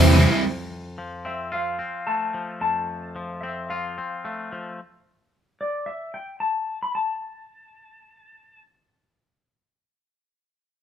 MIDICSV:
0, 0, Header, 1, 6, 480
1, 0, Start_track
1, 0, Tempo, 544959
1, 388, Time_signature, 4, 2, 24, 8
1, 9537, End_track
2, 0, Start_track
2, 0, Title_t, "Electric slide guitar"
2, 0, Program_c, 0, 29
2, 1110, Note_on_c, 0, 76, 47
2, 1349, Note_off_c, 0, 76, 0
2, 1352, Note_on_c, 0, 77, 56
2, 1820, Note_on_c, 0, 81, 58
2, 1841, Note_off_c, 0, 77, 0
2, 2292, Note_off_c, 0, 81, 0
2, 2303, Note_on_c, 0, 81, 62
2, 3001, Note_on_c, 0, 76, 45
2, 3044, Note_off_c, 0, 81, 0
2, 3253, Note_off_c, 0, 76, 0
2, 3256, Note_on_c, 0, 77, 44
2, 3945, Note_off_c, 0, 77, 0
2, 4939, Note_on_c, 0, 74, 40
2, 5163, Note_on_c, 0, 76, 49
2, 5189, Note_off_c, 0, 74, 0
2, 5397, Note_off_c, 0, 76, 0
2, 5408, Note_on_c, 0, 79, 45
2, 5635, Note_off_c, 0, 79, 0
2, 5639, Note_on_c, 0, 81, 53
2, 6008, Note_off_c, 0, 81, 0
2, 6012, Note_on_c, 0, 83, 54
2, 6118, Note_off_c, 0, 83, 0
2, 6122, Note_on_c, 0, 81, 52
2, 7577, Note_off_c, 0, 81, 0
2, 9537, End_track
3, 0, Start_track
3, 0, Title_t, "Vibraphone"
3, 0, Program_c, 1, 11
3, 0, Note_on_c, 1, 72, 84
3, 385, Note_off_c, 1, 72, 0
3, 9537, End_track
4, 0, Start_track
4, 0, Title_t, "Distorted electric guitar"
4, 0, Program_c, 2, 30
4, 0, Note_on_c, 2, 48, 88
4, 0, Note_on_c, 2, 52, 104
4, 31, Note_on_c, 2, 64, 65
4, 51, Note_on_c, 2, 60, 74
4, 61, Note_on_c, 2, 55, 65
4, 136, Note_off_c, 2, 52, 0
4, 143, Note_off_c, 2, 55, 0
4, 146, Note_on_c, 2, 52, 88
4, 153, Note_on_c, 2, 55, 81
4, 154, Note_off_c, 2, 60, 0
4, 163, Note_off_c, 2, 64, 0
4, 165, Note_on_c, 2, 60, 90
4, 174, Note_on_c, 2, 64, 90
4, 254, Note_off_c, 2, 64, 0
4, 265, Note_on_c, 2, 64, 65
4, 266, Note_off_c, 2, 48, 0
4, 269, Note_off_c, 2, 60, 0
4, 280, Note_on_c, 2, 60, 65
4, 283, Note_off_c, 2, 55, 0
4, 293, Note_on_c, 2, 55, 65
4, 372, Note_off_c, 2, 52, 0
4, 372, Note_off_c, 2, 64, 0
4, 379, Note_off_c, 2, 60, 0
4, 386, Note_off_c, 2, 55, 0
4, 9537, End_track
5, 0, Start_track
5, 0, Title_t, "Clean electric guitar"
5, 0, Program_c, 3, 27
5, 382, Note_on_c, 3, 41, 42
5, 864, Note_on_c, 3, 53, 45
5, 1101, Note_on_c, 3, 60, 40
5, 1337, Note_on_c, 3, 65, 42
5, 1571, Note_off_c, 3, 60, 0
5, 1574, Note_on_c, 3, 60, 34
5, 1580, Note_off_c, 3, 41, 0
5, 1822, Note_on_c, 3, 57, 42
5, 2053, Note_off_c, 3, 53, 0
5, 2063, Note_on_c, 3, 53, 37
5, 2300, Note_on_c, 3, 41, 40
5, 2539, Note_off_c, 3, 65, 0
5, 2769, Note_off_c, 3, 53, 0
5, 2778, Note_off_c, 3, 60, 0
5, 2780, Note_on_c, 3, 53, 40
5, 3022, Note_off_c, 3, 57, 0
5, 3024, Note_on_c, 3, 60, 42
5, 3262, Note_on_c, 3, 65, 42
5, 3494, Note_off_c, 3, 60, 0
5, 3501, Note_off_c, 3, 41, 0
5, 3504, Note_on_c, 3, 60, 36
5, 3741, Note_on_c, 3, 57, 39
5, 3974, Note_off_c, 3, 53, 0
5, 3984, Note_on_c, 3, 53, 39
5, 4222, Note_off_c, 3, 57, 0
5, 4223, Note_off_c, 3, 65, 0
5, 4224, Note_off_c, 3, 53, 0
5, 4224, Note_off_c, 3, 60, 0
5, 9537, End_track
6, 0, Start_track
6, 0, Title_t, "Fingered electric bass"
6, 0, Program_c, 4, 33
6, 0, Note_on_c, 4, 40, 106
6, 217, Note_off_c, 4, 40, 0
6, 9537, End_track
0, 0, End_of_file